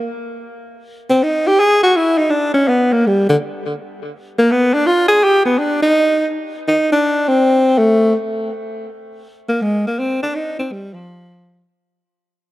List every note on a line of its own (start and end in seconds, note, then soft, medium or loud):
1.10 1.25 C4 medium
1.23 1.49 D#4 medium
1.47 1.62 G4 medium
1.60 1.82 G#4 medium
1.83 1.98 F#4 medium
1.96 2.19 E4 medium
2.18 2.32 D#4 medium
2.30 2.53 D4 medium
2.54 2.70 C#4 medium
2.68 2.94 B3 medium
2.93 3.09 A#3 medium
3.07 3.29 G3 medium
3.30 3.36 D3 medium
4.39 4.53 A#3 medium
4.52 4.76 B3 medium
4.74 4.88 D4 medium
4.87 5.08 F4 medium
5.08 5.25 G#4 medium
5.24 5.45 G4 medium
5.46 5.60 B3 medium
5.59 5.82 D4 medium
5.83 6.28 D#4 medium
6.68 6.90 D#4 medium
6.92 7.30 D4 medium
7.28 7.80 C4 medium
7.78 8.14 A3 medium
9.49 9.64 A#3 medium
9.62 9.84 G#3 medium
9.87 10.01 A#3 medium
9.99 10.21 C4 medium
10.23 10.37 D4 medium
10.35 10.57 D#4 medium
10.59 10.74 C4 medium
10.72 10.95 G3 medium
10.94 11.72 F3 medium